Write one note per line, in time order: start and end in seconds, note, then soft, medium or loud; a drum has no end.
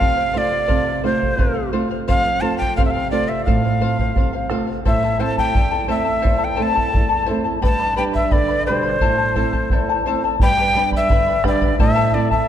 0.00 0.67 C3 medium
0.00 0.22 A3 soft
0.00 0.22 C4 soft
0.00 0.22 F4 soft
0.00 0.16 A4 soft
0.00 0.15 C5 soft
0.00 0.14 F5 medium
0.00 0.39 F5 loud
0.00 bombo low medium
0.16 0.33 C5 soft
0.16 0.32 F5 soft
0.33 0.91 A3 soft
0.33 0.91 C4 soft
0.33 0.91 F4 medium
0.33 0.51 A4 medium
0.33 0.50 C5 medium
0.33 0.49 F5 medium
0.38 1.05 D5 medium
0.51 0.67 C5 soft
0.51 0.67 F5 medium
0.68 1.36 C3 medium
0.68 0.86 A4 medium
0.68 0.85 C5 medium
0.68 0.85 F5 medium
0.68 bombo low medium
0.86 1.02 C5 soft
0.86 1.03 F5 soft
1.04 1.60 A3 soft
1.04 1.60 C4 soft
1.04 1.60 F4 soft
1.04 1.21 A4 medium
1.04 1.19 C5 medium
1.04 1.70 C5 medium
1.04 1.19 F5 medium
1.20 1.38 C5 soft
1.20 1.38 F5 soft
1.20 bombo low soft
1.37 2.05 C3 medium
1.37 1.56 A4 medium
1.37 1.54 C5 medium
1.37 1.53 F5 medium
1.37 bombo low medium
1.54 1.72 C5 soft
1.54 1.72 F5 medium
1.73 2.29 A3 soft
1.73 2.29 C4 soft
1.73 2.29 F4 medium
1.73 1.91 A4 medium
1.73 1.90 C5 medium
1.73 1.90 F5 medium
1.91 2.07 C5 soft
1.91 2.07 F5 medium
2.08 2.75 F2 medium
2.08 2.25 A4 medium
2.08 2.24 C5 medium
2.08 2.24 F5 medium
2.08 2.43 F5 loud
2.08 bombo low medium
2.26 2.41 C5 soft
2.41 2.98 A3 soft
2.41 2.98 C4 soft
2.41 2.98 F4 medium
2.41 2.60 A4 medium
2.41 2.59 C5 medium
2.41 2.58 F5 medium
2.41 2.57 A5 medium
2.58 2.78 C5 soft
2.58 2.77 F5 soft
2.58 2.75 G5 medium
2.58 bombo low soft
2.77 3.45 C3 medium
2.77 2.95 A4 medium
2.77 2.94 C5 medium
2.77 2.83 F5 medium
2.77 2.93 F5 medium
2.77 bombo low medium
2.85 2.92 E5 medium
2.91 3.10 F5 medium
2.91 3.12 F5 soft
2.96 3.11 C5 soft
3.11 3.68 A3 soft
3.11 3.67 C4 soft
3.11 3.68 F4 medium
3.11 3.30 A4 medium
3.11 3.28 C5 medium
3.11 3.30 D5 medium
3.11 3.28 F5 medium
3.29 3.47 C5 soft
3.29 3.45 E5 medium
3.29 3.47 F5 medium
3.45 4.14 A2 medium
3.45 3.64 A4 medium
3.45 3.64 C5 medium
3.45 4.46 F5 medium
3.45 3.63 F5 medium
3.45 bombo low medium
3.64 3.80 C5 soft
3.64 3.81 F5 medium
3.81 4.37 A3 soft
3.81 4.37 C4 soft
3.81 4.37 F4 soft
3.81 3.99 A4 medium
3.81 3.99 C5 medium
3.81 3.98 F5 medium
3.99 4.16 C5 soft
3.99 4.17 F5 soft
3.99 bombo low medium
4.16 4.83 C3 medium
4.16 4.33 A4 soft
4.16 4.33 C5 medium
4.16 4.32 F5 medium
4.16 bombo low medium
4.33 4.49 C5 soft
4.33 4.50 F5 medium
4.50 4.78 A3 soft
4.50 4.78 C4 soft
4.50 4.79 F4 soft
4.50 4.68 A4 medium
4.50 4.66 C5 medium
4.50 4.66 F5 medium
4.50 bombo rim soft
4.67 4.84 C5 soft
4.67 4.85 F5 medium
4.85 5.53 A2 medium
4.85 5.03 E4 medium
4.85 5.03 A4 medium
4.85 5.03 C5 medium
4.85 5.03 E5 medium
4.85 5.23 E5 medium
4.85 5.03 A5 medium
4.85 bombo low medium
5.04 5.19 E4 soft
5.04 5.18 A4 soft
5.04 5.19 A5 medium
5.19 5.75 A3 soft
5.19 5.76 C4 soft
5.19 5.37 E4 medium
5.19 5.76 E4 soft
5.19 5.37 A4 medium
5.19 5.37 C5 medium
5.19 5.37 E5 medium
5.19 5.36 A5 medium
5.19 5.38 A5 medium
5.37 5.55 E4 soft
5.37 5.55 A4 soft
5.37 5.86 G5 medium
5.37 5.55 A5 soft
5.37 bombo low soft
5.55 6.23 E2 medium
5.55 5.72 E4 medium
5.55 5.71 A4 medium
5.55 5.72 E5 medium
5.55 5.70 A5 medium
5.55 bombo low medium
5.71 5.87 E4 soft
5.71 5.87 A4 soft
5.71 5.88 A5 medium
5.88 6.44 A3 soft
5.88 6.44 C4 soft
5.88 6.05 E4 medium
5.88 6.44 E4 soft
5.88 6.04 A4 medium
5.88 6.06 C5 medium
5.88 6.06 E5 medium
5.88 6.46 E5 medium
5.88 6.03 A5 medium
6.04 6.21 E4 soft
6.04 6.22 A4 soft
6.04 6.22 A5 soft
6.22 6.92 E2 medium
6.22 6.39 E4 medium
6.22 6.38 A4 medium
6.22 6.41 C5 medium
6.22 6.41 E5 medium
6.22 6.37 A5 medium
6.22 bombo low medium
6.38 6.56 E4 soft
6.38 6.56 A4 soft
6.38 6.56 A5 soft
6.44 6.64 G5 medium
6.56 7.15 A3 soft
6.56 7.15 C4 soft
6.56 6.74 E4 medium
6.56 6.74 A4 medium
6.56 6.75 C5 medium
6.56 6.75 E5 medium
6.56 6.73 A5 medium
6.60 7.15 E4 soft
6.60 7.30 A5 medium
6.75 6.91 E4 soft
6.75 6.91 A4 soft
6.75 6.92 A5 medium
6.75 bombo low soft
6.92 7.62 E2 medium
6.92 7.09 E4 medium
6.92 7.08 A4 medium
6.92 7.10 E5 medium
6.92 7.08 A5 medium
6.92 bombo low medium
7.09 7.26 E4 soft
7.09 7.26 A4 soft
7.09 7.26 A5 medium
7.26 7.57 A3 soft
7.26 7.44 E4 medium
7.26 7.44 A4 medium
7.26 7.45 C5 medium
7.26 7.45 E5 medium
7.26 7.43 A5 medium
7.30 7.57 C4 soft
7.30 7.58 E4 medium
7.44 7.62 E4 soft
7.44 7.62 A4 soft
7.44 7.62 A5 soft
7.62 8.31 G2 medium
7.62 7.80 G4 medium
7.62 7.80 B4 medium
7.62 7.79 D5 medium
7.62 7.80 G5 medium
7.62 7.96 A5 medium
7.62 7.78 B5 medium
7.62 bombo low medium
7.80 7.96 B4 soft
7.80 7.96 D5 soft
7.80 7.96 B5 medium
7.96 8.34 G3 soft
7.96 8.54 B3 soft
7.96 8.54 D4 soft
7.96 8.14 G4 medium
7.96 8.13 B4 medium
7.96 8.13 D5 medium
7.96 8.14 G5 medium
7.96 8.04 G5 medium
7.96 8.12 B5 medium
8.13 8.30 B4 soft
8.13 8.31 D5 soft
8.13 8.34 E5 medium
8.13 8.31 B5 soft
8.13 bombo low soft
8.31 9.01 D3 medium
8.31 8.49 B4 medium
8.31 8.48 D5 medium
8.31 8.66 D5 medium
8.31 8.49 G5 medium
8.31 8.47 B5 medium
8.31 bombo low medium
8.48 8.66 B4 soft
8.48 8.66 D5 soft
8.48 8.66 B5 medium
8.66 8.96 B2 soft
8.66 8.96 G3 soft
8.66 8.96 D4 soft
8.66 8.84 G4 medium
8.66 8.83 B4 medium
8.66 10.02 C5 medium
8.66 8.82 D5 medium
8.66 8.84 G5 medium
8.66 8.82 B5 medium
8.83 9.01 B4 soft
8.83 9.01 D5 soft
8.83 9.01 B5 soft
9.01 9.70 A2 medium
9.01 9.18 E4 medium
9.01 9.17 A4 medium
9.01 9.19 C5 medium
9.01 9.19 E5 medium
9.01 9.17 A5 medium
9.01 bombo low medium
9.18 9.34 E4 soft
9.18 9.35 A4 soft
9.18 9.35 A5 medium
9.35 9.92 A3 soft
9.35 9.92 C4 soft
9.35 9.53 E4 medium
9.35 9.93 E4 soft
9.35 9.53 A4 medium
9.35 9.53 C5 medium
9.35 9.54 E5 medium
9.35 9.52 A5 medium
9.35 bombo low soft
9.53 9.71 E4 soft
9.53 9.71 A4 soft
9.53 9.71 A5 medium
9.53 bombo low soft
9.70 10.39 E2 medium
9.70 9.89 E4 medium
9.70 9.89 A4 medium
9.70 9.89 E5 medium
9.70 9.88 A5 medium
9.70 bombo low medium
9.89 10.05 E4 soft
9.89 10.06 A4 medium
9.89 10.06 A5 medium
10.06 10.35 A3 soft
10.06 10.35 C4 soft
10.06 10.24 E4 medium
10.06 10.35 E4 medium
10.06 10.23 A4 medium
10.06 10.23 C5 medium
10.06 10.23 E5 medium
10.06 10.23 A5 medium
10.24 10.41 E4 soft
10.24 10.41 A4 soft
10.24 10.41 A5 medium
10.40 11.09 G2 medium
10.40 10.58 G4 medium
10.40 10.59 B4 medium
10.40 10.58 D5 medium
10.40 10.58 G5 medium
10.40 10.90 G5 loud
10.40 10.58 B5 medium
10.40 bombo low medium
10.59 10.76 G4 soft
10.59 10.75 B4 medium
10.59 10.75 D5 medium
10.59 10.74 G5 medium
10.59 10.76 B5 medium
10.75 11.31 G3 soft
10.75 11.31 B3 soft
10.75 11.32 D4 medium
10.75 10.93 B4 medium
10.75 10.93 D5 medium
10.75 10.93 G5 medium
10.75 10.92 B5 medium
10.91 11.09 B4 soft
10.91 11.10 D5 soft
10.91 11.10 B5 soft
10.91 bombo low medium
10.97 11.43 E5 medium
11.10 11.77 D3 medium
11.10 11.27 B4 medium
11.10 11.27 D5 medium
11.10 11.28 G5 medium
11.10 11.26 B5 medium
11.10 bombo low medium
11.27 11.43 B4 soft
11.27 11.43 D5 soft
11.27 11.44 B5 medium
11.44 11.72 G3 soft
11.44 11.72 B3 soft
11.44 11.73 D4 medium
11.44 11.62 G4 medium
11.44 11.61 B4 medium
11.44 11.61 D5 medium
11.44 11.79 D5 medium
11.44 11.62 G5 medium
11.44 11.60 B5 medium
11.44 bombo rim medium
11.44 bombo low medium
11.61 11.79 B4 soft
11.61 11.79 D5 soft
11.61 11.79 B5 medium
11.61 bombo low medium
11.79 12.46 A2 medium
11.79 11.95 E4 medium
11.79 11.95 A4 medium
11.79 11.96 C5 medium
11.79 11.96 E5 medium
11.79 12.16 E5 medium
11.79 11.94 A5 medium
11.79 bombo low medium
11.96 12.14 E4 medium
11.96 12.14 A4 medium
11.96 12.14 C5 medium
11.96 12.13 E5 medium
11.96 12.14 A5 medium
12.14 12.48 A3 soft
12.14 12.48 C4 soft
12.14 12.48 E4 soft
12.14 12.31 E4 medium
12.14 12.31 A4 medium
12.14 12.31 D5 medium
12.14 12.32 E5 medium
12.14 12.30 A5 medium
12.31 12.47 E4 soft
12.31 12.48 A4 soft
12.31 12.48 E5 medium
12.31 12.48 A5 medium
12.31 bombo low medium